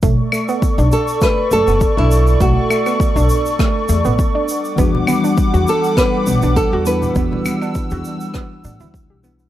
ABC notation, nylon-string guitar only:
X:1
M:4/4
L:1/16
Q:"Swing 16ths" 1/4=101
K:Bm
V:1 name="Nylon-string guitar"
z6 A2 B2 A3 E3 | F6 z8 z2 | z6 A2 B4 A2 B2- | B12 z4 |]